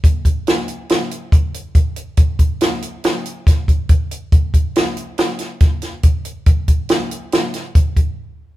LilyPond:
\new DrumStaff \with { instrumentName = "Drums" } \drummode { \time 5/4 \tempo 4 = 140 <hh bd>8 <hh bd>8 <hh sn>8 hh8 <hh sn>8 hh8 <hh bd>8 hh8 <hh bd>8 hh8 | <hh bd>8 <hh bd>8 <hh sn>8 hh8 <hh sn>8 hh8 <hh bd sn>8 <hh bd>8 <hh bd>8 hh8 | <hh bd>8 <hh bd>8 <hh sn>8 hh8 <hh sn>8 <hh sn>8 <hh bd sn>8 <hh sn>8 <hh bd>8 hh8 | <hh bd>8 <hh bd>8 <hh sn>8 hh8 <hh sn>8 <hh sn>8 <hh bd>8 <hh bd>8 r4 | }